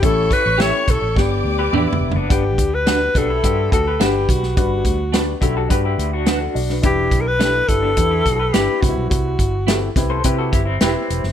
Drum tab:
HH |x-----x-----x-----x-----------------------------|x-----x-----x-----x-----x-----x-----x-----x-----|x-----x-----x-----x-----x-----x-----x-----o-----|x-----x-----x-----x-----x-----x-----x-----x-----|
SD |------------o-----------o-----------------------|------------o-----------------------o--------o--|------------o-----------------------o--------o--|------------o-----------------------o-----------|
T2 |------------------------------------o-----------|------------------------------------------------|------------------------------------------------|------------------------------------------------|
FT |----------------------------------------o---o---|------------------------------------------------|------------------------------------------------|------------------------------------------------|
BD |o-----o-----------o-----o-----------------------|o-----o-----------o-----o-----o-----------o-----|o-----o-----------o-----o-----------------------|o-----o-----------o-----o-----o-----------o-----|

HH |x-----x-----x-----x-----x-----x-----x-----x-----|
SD |------------o-----o-----------------o--------o--|
T2 |------------------------------------------------|
FT |------------------------------------------------|
BD |o-----o-----------o-----o-----o-----------------|